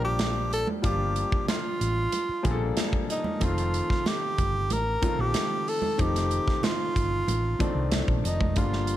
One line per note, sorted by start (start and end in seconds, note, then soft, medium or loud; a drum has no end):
0.00 0.64 A#1 medium
0.00 0.82 F3 medium
0.00 0.82 G3 medium
0.00 0.83 A#3 medium
0.00 0.83 D4 medium
0.00 3.44 G4 medium
0.04 0.49 G4 medium
0.19 snare loud
0.19 closed hi-hat medium
0.19 high conga medium
0.53 0.68 A4 loud
0.53 closed hi-hat medium
0.67 high conga medium
0.82 1.22 G1 medium
0.82 1.83 F3 medium
0.82 1.83 G3 medium
0.82 1.84 A#3 medium
0.82 1.84 D4 medium
0.82 1.84 F4 medium
0.82 1.45 G4 medium
0.82 kick medium
0.82 closed hi-hat medium
0.82 muted conga soft
1.16 closed hi-hat medium
1.32 muted fingered electric bass stroke soft
1.32 kick medium
1.48 2.79 F4 medium
1.48 snare medium
1.48 closed hi-hat medium
1.48 high conga medium
1.81 2.06 A1 medium
1.81 closed hi-hat medium
2.12 closed hi-hat medium
2.12 muted conga soft
2.29 muted fingered electric bass stroke soft
2.43 2.71 A#1 medium
2.43 3.19 F3 medium
2.43 3.19 G3 medium
2.43 3.20 A#3 medium
2.43 3.20 D4 medium
2.43 2.51 G#4 medium
2.43 kick medium
2.43 closed hi-hat medium
2.43 muted conga soft
2.43 low conga medium
2.51 3.23 A4 medium
2.77 snare loud
2.77 closed hi-hat medium
2.77 high conga medium
2.93 kick medium
3.10 3.45 D#4 medium
3.10 closed hi-hat medium
3.24 high conga medium
3.40 3.80 F1 medium
3.40 4.41 D#3 medium
3.40 4.41 F3 medium
3.40 4.41 A3 medium
3.40 4.41 C4 medium
3.40 4.42 F4 medium
3.40 4.09 F4 medium
3.40 kick medium
3.40 closed hi-hat medium
3.40 muted conga soft
3.58 closed hi-hat medium
3.74 closed hi-hat medium
3.90 muted fingered electric bass stroke soft
3.90 kick medium
3.90 snare soft
4.06 4.74 G4 loud
4.06 snare medium
4.06 closed hi-hat medium
4.06 high conga medium
4.38 4.71 G1 medium
4.38 kick medium
4.38 closed hi-hat medium
4.38 low conga medium
4.70 4.96 A1 medium
4.70 5.22 A#4 medium
4.70 closed hi-hat medium
4.70 muted conga soft
5.02 5.77 D#3 medium
5.02 5.78 F3 medium
5.02 5.78 A3 medium
5.02 5.78 C4 medium
5.02 5.78 F4 medium
5.02 kick medium
5.02 closed hi-hat medium
5.02 muted conga medium
5.02 low conga medium
5.19 5.32 A#1 medium
5.19 5.70 G4 loud
5.34 snare medium
5.34 closed hi-hat medium
5.34 high conga medium
5.68 6.02 A4 medium
5.68 open hi-hat soft
5.82 high conga medium
5.98 6.38 F1 medium
5.98 6.99 D#3 medium
5.98 6.99 F3 medium
5.98 6.99 A3 medium
5.98 6.99 C4 soft
5.98 6.99 D#4 medium
5.98 6.66 G4 medium
5.98 kick medium
5.98 closed hi-hat medium
5.98 muted conga soft
6.16 snare soft
6.16 closed hi-hat medium
6.31 closed hi-hat soft
6.48 muted fingered electric bass stroke soft
6.48 kick medium
6.48 snare soft
6.63 7.98 F4 medium
6.63 snare loud
6.63 closed hi-hat medium
6.63 high conga medium
6.96 7.22 G1 medium
6.96 kick medium
6.96 closed hi-hat medium
7.28 7.53 A1 medium
7.28 closed hi-hat medium
7.28 muted conga soft
7.59 8.35 D#3 medium
7.59 8.35 F3 medium
7.59 8.35 A3 medium
7.59 8.36 C4 medium
7.59 8.36 D4 medium
7.59 muted fingered electric bass stroke soft
7.59 kick medium
7.59 closed hi-hat medium
7.59 muted conga soft
7.59 low conga medium
7.75 8.01 C2 medium
7.92 snare loud
7.92 closed hi-hat medium
7.92 high conga medium
8.08 8.21 A#1 medium
8.08 kick medium
8.24 8.57 F1 medium
8.24 8.59 D#4 medium
8.24 closed hi-hat medium
8.40 kick medium
8.40 high conga medium
8.56 8.95 G1 medium
8.56 8.97 D3 medium
8.56 8.97 F3 medium
8.56 8.97 G3 medium
8.56 8.97 A#3 medium
8.56 8.97 F4 medium
8.56 kick medium
8.56 closed hi-hat medium
8.56 muted conga soft
8.73 snare soft
8.87 closed hi-hat medium